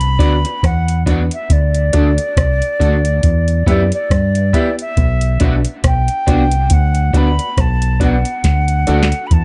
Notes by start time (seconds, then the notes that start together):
Already playing: C2 B5
0.01 closed hi-hat
0.19 B3 D4 F#4 B4 D5, kick, closed hi-hat
0.45 B4 D5, muted clean electric guitar stroke, closed hi-hat
0.63 E2 F#5, kick, cross-stick, closed hi-hat
0.88 closed hi-hat
1.06 B3 D4 F#4 B4 D5, kick, closed hi-hat
1.31 E5, closed hi-hat
1.50 D2 D5, kick, closed hi-hat
1.75 closed hi-hat
1.93 D2 A3 D4 F#4 A4 D5, kick, closed hi-hat
2.18 closed hi-hat
2.37 C2, kick, cross-stick, closed hi-hat
2.62 closed hi-hat
2.79 D2 A3 D4 F#4 A4 D5, kick, closed hi-hat
3.05 closed hi-hat
3.23 E2, kick, closed hi-hat
3.48 closed hi-hat
3.66 F#2 B3 E4 G4 B4 D5 E5, kick, closed hi-hat
3.92 D5, closed hi-hat
4.10 G2, kick, cross-stick, closed hi-hat
4.35 B4 E5, closed hi-hat
4.53 B3 E4 G4 B4 E5, kick, closed hi-hat
4.79 E5, closed hi-hat
4.97 B1, kick, closed hi-hat
5.21 closed hi-hat
5.40 B1 B3 D4 F#4 B4 D5, kick, closed hi-hat
5.65 closed hi-hat
5.84 B1 G5, kick, cross-stick, closed hi-hat
6.08 closed hi-hat
6.27 C2 B3 D4 F#4 B4 D5, kick, cross-stick, closed hi-hat
6.52 closed hi-hat
6.70 D2 F#5, kick, closed hi-hat
6.95 closed hi-hat
7.13 D2 B3 D4 F#4 B4 D5 B5, kick, closed hi-hat
7.39 B4 D5, closed hi-hat
7.57 B1 A5, kick, cross-stick, closed hi-hat
7.82 closed hi-hat
8.00 B3 D4 F#4 B4 D5 F#5, kick, closed hi-hat
8.25 closed hi-hat
8.44 D2, kick, snare, closed hi-hat
8.68 closed hi-hat
8.87 D2 A3 D4 F#4 A4 D5, closed hi-hat
9.03 snare
9.12 closed hi-hat
9.26 B5
9.31 E2 A5, kick, closed hi-hat